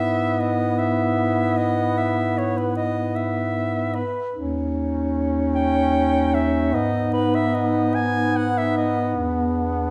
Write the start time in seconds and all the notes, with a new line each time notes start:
Already playing: G#2 B3 E4 E5
0.40 D#5
0.79 E5
1.57 D#5
1.98 E5
2.38 C#5
2.57 B4
2.76 D#5
3.16 E5
3.95 B4
4.34 D#2 C#4 D#4
5.55 G5
6.34 E5
6.73 G#2 B3 D#5
7.13 B4
7.35 E5
7.54 D#5
7.95 G#5
8.36 F#5
8.57 E5
8.77 D#5
9.16 E2 D4